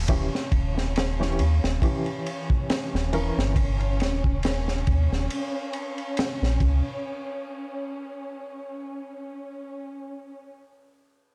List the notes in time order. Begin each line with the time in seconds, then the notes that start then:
0.08 D#1 E3 C#4 G4, kick, ride
0.35 snare
0.52 D#1, kick, ride
0.78 snare
0.96 snare, ride
1.20 E3 C#4 G4, snare
1.39 D#2, ride
1.64 D#1, snare
1.82 E3 C#4 G4, kick, ride
2.06 ride
2.26 ride
2.50 kick
2.70 snare, ride
2.94 D#1, snare
3.13 E3 C#4 A#4, ride
3.37 G1, snare
3.56 kick, ride
3.80 ride
4.00 D#1, snare, ride
4.24 kick
4.43 snare, ride
4.68 snare
4.87 D#2, kick, ride
5.11 D#1, snare
5.30 ride
5.73 ride
5.98 ride
6.17 snare, ride
6.42 A#1, snare
6.60 C#2, kick, ride